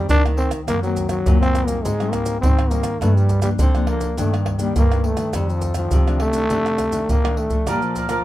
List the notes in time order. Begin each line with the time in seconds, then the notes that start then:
Already playing: D#3 A3 C4
0.09 C3 D#3 D4, pandeiro, maracas, surdo
0.26 D#3 A3 C4, pandeiro, tamborim, maracas
0.37 C4, pandeiro, surdo
0.51 pandeiro, tamborim, maracas, surdo
0.68 F#2 D#3 A#3 C4, pandeiro, tamborim, maracas, surdo
0.83 D#3 F#3 A#3 C4, pandeiro, maracas
0.97 pandeiro, maracas, surdo
1.09 F#3, pandeiro, tamborim, maracas
1.26 F#2 A#2 D#3 A#3 C4, pandeiro, maracas, surdo
1.41 C4, pandeiro, tamborim, maracas
1.55 pandeiro, tamborim, maracas
1.67 G3 A#3 C4 D#4, pandeiro, maracas, surdo
1.84 G#2 G#3, pandeiro, maracas, surdo
2.00 G3 C4 D#4, pandeiro, tamborim, maracas
2.12 A#3, pandeiro, tamborim, maracas, surdo
2.26 pandeiro, maracas
2.41 G#2 D#3 G3 C4 D#4, pandeiro, maracas, surdo
2.59 pandeiro, tamborim, maracas
2.70 G3 A#3 C4 D#4, pandeiro, maracas
2.83 pandeiro, tamborim, maracas, surdo
3.01 G2 F3 A3 A#3 D4, pandeiro, tamborim, maracas, surdo
3.16 G3, pandeiro, maracas
3.29 pandeiro, maracas, surdo
3.42 F3 G3 A#3 D4, pandeiro, tamborim, maracas
3.59 D3 C4, pandeiro, maracas, surdo
3.75 F3 A#3 D4, pandeiro, tamborim, maracas
3.87 A#3, pandeiro, tamborim
4.01 pandeiro, maracas, surdo
4.18 G2 D#3 A3 A#3 D4, pandeiro, maracas, surdo
4.34 pandeiro, tamborim, maracas
4.46 pandeiro, tamborim, surdo
4.58 D#3 G3 A#3 D4, pandeiro, maracas
4.76 G2 A#3, pandeiro, maracas, surdo
4.91 D#3 A#3 D4, pandeiro, tamborim, maracas
5.04 A3, pandeiro
5.16 D#3 A3 D4, pandeiro, tamborim, maracas, surdo
5.33 F2 G3, pandeiro, tamborim, maracas, surdo
5.49 F3, pandeiro, maracas
5.62 pandeiro, maracas, surdo
5.74 D#3 F3 A3 D4, pandeiro, tamborim, maracas
5.91 C3, pandeiro, maracas, surdo
6.07 D#3 A3 D4, pandeiro, tamborim, maracas
6.20 A3, pandeiro, tamborim
6.33 D#3 A3 D4, pandeiro, maracas, surdo
6.50 F2 C3 D#3 A3 D4, pandeiro, maracas, surdo
6.66 pandeiro, tamborim, maracas
6.78 pandeiro, tamborim, maracas, surdo
6.91 D#3 A3 D4, pandeiro, maracas
7.09 A2 C3 A#3, pandeiro, maracas, surdo
7.25 D#3 A3 D4, pandeiro, tamborim, maracas
7.37 A3, pandeiro, surdo
7.50 F3 A3 D4, pandeiro, maracas, surdo
7.67 A#2 G3 A#4 D5 F5 A5, pandeiro, tamborim, maracas, surdo
7.82 F3, pandeiro, maracas
7.96 A#4 D5 F5 A5, pandeiro, maracas, surdo
8.09 F3 A3 D4 A#4 D5 F5 A5, pandeiro, tamborim, maracas